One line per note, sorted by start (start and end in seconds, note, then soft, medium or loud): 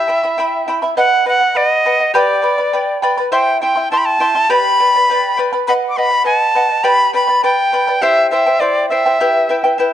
0.00 0.70 E5 medium
0.08 0.23 E4 soft
0.08 0.23 E5 medium
0.08 0.24 G5 soft
0.08 0.22 B5 medium
0.23 0.37 E4 soft
0.23 0.38 E5 soft
0.23 0.39 B5 medium
0.38 0.66 E4 medium
0.38 0.67 E5 medium
0.38 0.66 G5 medium
0.38 0.68 B5 medium
0.68 0.83 E4 medium
0.68 0.81 E5 medium
0.68 0.83 G5 medium
0.68 0.81 B5 medium
0.82 0.97 E4 soft
0.82 0.97 E5 soft
0.82 0.98 B5 medium
0.97 1.24 B4 medium
0.97 1.25 D#5 medium
0.97 1.25 F#5 medium
0.97 1.26 F#5 loud
1.26 1.41 B4 medium
1.26 1.41 D#5 medium
1.26 1.39 F#5 medium
1.26 1.58 F#5 medium
1.41 1.54 D#5 soft
1.41 1.55 F#5 medium
1.55 1.84 B4 medium
1.55 1.85 D#5 medium
1.55 2.14 D#5 medium
1.55 1.85 F#5 medium
1.86 2.01 B4 medium
1.86 2.00 D#5 medium
1.86 1.99 F#5 medium
2.00 2.14 D#5 soft
2.00 2.14 F#5 soft
2.14 2.44 G4 medium
2.14 2.42 B4 medium
2.14 2.42 D5 medium
2.14 2.99 D5 medium
2.14 2.41 G5 medium
2.14 2.43 B5 medium
2.42 2.58 B4 medium
2.42 2.57 D5 medium
2.42 2.58 G5 medium
2.42 2.57 B5 medium
2.58 2.72 B4 soft
2.58 2.73 D5 soft
2.58 2.73 B5 medium
2.73 3.02 B4 medium
2.73 3.02 D5 medium
2.73 3.01 G5 medium
2.73 3.02 B5 medium
3.02 3.18 B4 medium
3.02 3.17 D5 medium
3.02 3.18 G5 medium
3.02 3.16 B5 medium
3.17 3.31 B4 soft
3.17 3.32 D5 soft
3.17 3.32 B5 medium
3.32 3.61 E4 medium
3.32 3.62 C5 medium
3.32 3.61 E5 medium
3.32 3.60 G5 medium
3.32 3.61 G5 medium
3.32 3.61 C6 medium
3.61 3.76 E4 medium
3.61 3.76 E5 soft
3.61 3.89 G5 medium
3.61 3.77 G5 medium
3.61 3.74 C6 medium
3.76 3.91 E4 soft
3.76 3.92 E5 soft
3.76 3.91 C6 medium
3.91 4.19 E4 medium
3.91 4.20 E5 medium
3.91 4.19 G5 medium
3.91 3.99 A5 medium
3.91 4.20 C6 medium
3.98 4.07 B5 medium
4.05 4.52 A5 medium
4.20 4.35 E4 medium
4.20 4.35 E5 medium
4.20 4.35 G5 medium
4.20 4.34 C6 medium
4.35 4.49 E4 soft
4.35 4.50 E5 soft
4.35 4.50 C6 medium
4.50 4.79 G4 medium
4.50 4.79 B4 medium
4.50 4.79 D5 medium
4.50 4.78 G5 medium
4.50 5.38 B5 loud
4.50 4.79 B5 medium
4.80 4.95 B4 medium
4.80 4.94 D5 medium
4.80 4.94 G5 soft
4.80 4.94 B5 medium
4.95 5.09 B4 soft
4.95 5.09 D5 soft
4.95 5.09 B5 soft
5.10 5.37 B4 medium
5.10 5.38 D5 medium
5.10 5.36 G5 medium
5.10 5.38 B5 medium
5.37 5.52 B4 medium
5.37 5.52 D5 medium
5.37 5.52 G5 medium
5.37 5.51 B5 medium
5.53 5.67 B4 soft
5.53 5.68 D5 soft
5.53 5.67 B5 medium
5.67 5.96 B4 medium
5.67 5.97 D#5 medium
5.67 5.97 F#5 medium
5.67 5.73 B5 medium
5.89 5.98 D6 medium
5.97 6.12 B4 medium
5.97 6.11 D#5 medium
5.97 6.09 F#5 medium
5.97 6.25 B5 medium
6.11 6.24 D#5 soft
6.11 6.25 F#5 soft
6.24 6.54 B4 medium
6.24 6.54 D#5 medium
6.24 6.55 F#5 medium
6.24 6.85 A5 loud
6.55 6.70 B4 medium
6.55 6.69 D#5 medium
6.55 6.68 F#5 medium
6.69 6.83 D#5 soft
6.69 6.83 F#5 medium
6.84 7.14 G4 medium
6.84 7.13 B4 medium
6.84 7.13 D5 medium
6.84 7.12 G5 medium
6.84 7.14 B5 loud
6.84 7.13 B5 medium
7.13 7.28 B4 medium
7.13 7.27 D5 medium
7.13 7.28 G5 medium
7.13 7.26 B5 medium
7.13 7.42 B5 medium
7.28 7.43 B4 soft
7.28 7.43 D5 soft
7.28 7.43 B5 medium
7.43 7.71 B4 medium
7.43 7.72 D5 medium
7.43 7.71 G5 medium
7.43 8.04 G5 medium
7.43 7.73 B5 medium
7.72 7.87 B4 medium
7.72 7.87 D5 medium
7.72 7.87 G5 medium
7.72 7.86 B5 medium
7.87 8.02 B4 soft
7.87 8.03 D5 medium
7.87 8.02 B5 medium
8.02 8.31 E4 medium
8.02 8.31 G4 medium
8.02 8.31 C5 medium
8.02 8.30 E5 medium
8.02 8.32 G5 medium
8.30 8.46 E4 medium
8.30 8.46 C5 medium
8.30 8.61 E5 medium
8.30 8.46 E5 medium
8.30 8.45 G5 medium
8.46 8.60 E4 soft
8.46 8.60 C5 soft
8.46 8.61 G5 medium
8.60 8.90 E4 medium
8.60 8.90 C5 medium
8.60 8.89 D5 medium
8.60 8.89 E5 medium
8.60 8.91 G5 medium
8.89 9.05 E4 medium
8.89 9.05 C5 medium
8.89 9.74 E5 medium
8.89 9.05 E5 medium
8.89 9.04 G5 medium
9.06 9.19 E4 soft
9.06 9.20 C5 soft
9.06 9.20 G5 soft
9.20 9.49 E4 medium
9.20 9.49 G4 medium
9.20 9.48 B4 medium
9.20 9.48 E5 medium
9.20 9.49 G5 medium
9.49 9.64 E4 medium
9.49 9.63 B4 medium
9.49 9.64 E5 medium
9.49 9.62 G5 medium
9.64 9.78 E4 medium
9.64 9.79 B4 medium
9.64 9.78 G5 medium
9.78 9.93 E4 medium
9.78 9.93 B4 medium
9.78 9.93 E5 medium
9.78 9.93 G5 medium